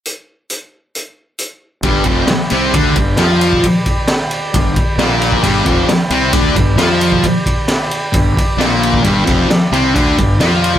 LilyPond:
<<
  \new Staff \with { instrumentName = "Transistor combo organ" } { \time 4/4 \key g \major \tempo 4 = 133 r1 | <g' d'' b''>1~ | <g' d'' b''>1 | <g' d'' b''>1~ |
<g' d'' b''>1 | <g' d'' b''>1 | }
  \new Staff \with { instrumentName = "Distorted electric guitar" } { \clef bass \time 4/4 \key g \major r1 | <g, g>8 <f, f>8 r8 <c c'>8 <d d'>8 g,8 <f f'>4 | r2 g,8 r8 <bes, bes>4 | <g, g>8 <f, f>8 r8 <c c'>8 <d d'>8 g,8 <f f'>4 |
r2 g,8 r8 <bes, bes>4 | <g, g>8 <f, f>8 r8 <c c'>8 <d d'>8 g,8 <f f'>4 | }
  \new Staff \with { instrumentName = "Fingered electric bass" } { \clef bass \time 4/4 \key g \major r1 | g,,8 f,,8 r8 c,8 d,8 g,,8 f,4 | r2 g,,8 r8 bes,,4 | g,,8 f,,8 r8 c,8 d,8 g,,8 f,4 |
r2 g,,8 r8 bes,,4 | g,,8 f,,8 r8 c,8 d,8 g,,8 f,4 | }
  \new DrumStaff \with { instrumentName = "Drums" } \drummode { \time 4/4 hh4 hh4 hh4 hh4 | <bd cymr>8 <bd cymr>8 <cymr sn>8 cymr8 <bd cymr>8 <bd cymr>8 <cymr sn>8 cymr16 bd16 | <bd cymr>8 <bd cymr>8 <cymr sn>8 cymr8 <bd cymr>8 <bd cymr>8 <cymr sn>8 cymr16 bd16 | <bd cymr>8 <bd cymr>8 <cymr sn>8 cymr8 <bd cymr>8 <bd cymr>8 <cymr sn>8 cymr16 bd16 |
<bd cymr>8 <bd cymr>8 <cymr sn>8 cymr8 <bd cymr>8 <bd cymr>8 <cymr sn>8 cymr16 bd16 | <bd cymr>8 <bd cymr>8 <cymr sn>8 cymr8 <bd cymr>8 <bd cymr>8 <cymr sn>8 cymr8 | }
>>